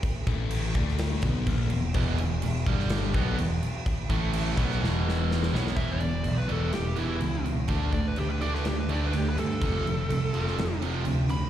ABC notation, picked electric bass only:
X:1
M:4/4
L:1/8
Q:1/4=125
K:Ephr
V:1 name="Picked electric bass" clef=bass
z A,,,2 D,,2 B,,, ^A,,, E,,, | E,,, E,,, E,,, G,,,2 B,,, E,,, z | z A,,,2 B,,, E,,,3 B,,, | E,,, E,,, B,,, E,,, E,,, E,,, ^C,,2 |
D,,2 D,, D,, D,, D,, D,, G,, | F,,, F,,, C,, F,,, F,,, F,,, D,,2 |]